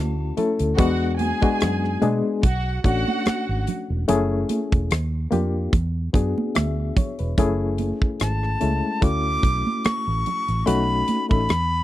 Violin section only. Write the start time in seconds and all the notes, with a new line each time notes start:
0.78 F#4 F#5
1.20 G#4 G#5
2.43 F#4 F#5
2.84 F#4 F#5